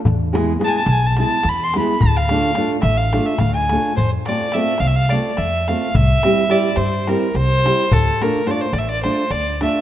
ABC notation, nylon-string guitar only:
X:1
M:7/8
L:1/8
Q:1/4=107
K:none
V:1 name="Nylon-string guitar"
z [^G,B,E^G] [G,B,EG] z [G,B,EG] z [G,B,EG] | z [A,DFA] [A,DFA] z [A,DFA] z [A,DFA] | z [A,CFA] [A,CFA] z [A,CFA] z [A,CFA] | z [G,CEG] [G,CEG] z [G,CEG] z [G,CEG] |
z [A,DFA] [A,DFA] z [A,DFA] z [A,DFA] |]